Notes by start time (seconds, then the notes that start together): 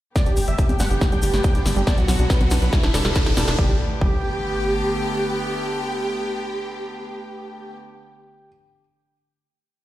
0.16 D3 G3 A3 B3 G4 D5, kick, snare, closed hi-hat, riser, shaker
0.26 G1 D4 G4, closed hi-hat, shaker
0.37 G1 G3 G4, open hi-hat, shaker
0.48 G1 G3 E5, closed hi-hat, shaker
0.58 D4 G4, kick, closed hi-hat, shaker
0.69 G1 G3 G4, closed hi-hat, high conga, shaker
0.79 G1 G3 F#5, snare, open hi-hat, shaker
0.91 G1 D4 G4, closed hi-hat, shaker
1.01 G3 G4, kick, snare, closed hi-hat, shaker
1.12 G1 G3 G5, closed hi-hat, shaker
1.22 G1 D4 G4, open hi-hat, shaker
1.33 G1 G3 G4, snare, closed hi-hat, shaker
1.44 G3 G5, kick, closed hi-hat, shaker
1.55 G1 D4 G4, closed hi-hat, shaker
1.66 G1 G3, snare, open hi-hat, shaker
1.76 G1 G3 G4, closed hi-hat, shaker
1.87 F#3 D4 F#4 D5, kick, snare, closed hi-hat, shaker
1.98 B1 F#3 F#4, closed hi-hat, shaker
2.08 B1 F#3 F#4, snare, open hi-hat, shaker
2.19 B1 D4 F#4, closed hi-hat, shaker
2.30 F#3 B4, kick, snare, closed hi-hat, shaker
2.40 B1 F#3 F#4, closed hi-hat, high conga, shaker
2.51 B1 D4 F#4, snare, open hi-hat, shaker
2.62 B1 F#3 B4, closed hi-hat, shaker
2.73 D3 G3 B3 E4, kick, snare, closed hi-hat, shaker
2.83 E1 D4 E4, snare, closed hi-hat, shaker
2.94 E1 G3 A4, snare, open hi-hat, shaker
3.05 E1 G3, snare, closed hi-hat, shaker
3.15 D4, kick, snare, closed hi-hat, shaker
3.26 E1 G3, snare, closed hi-hat, shaker
3.37 E1 G3, snare, open hi-hat, high conga, shaker
3.47 E1 D4, snare, closed hi-hat, shaker
3.58 D3 G3 A3 B3 G4, kick, impact
4.01 G1 G3 G4, kick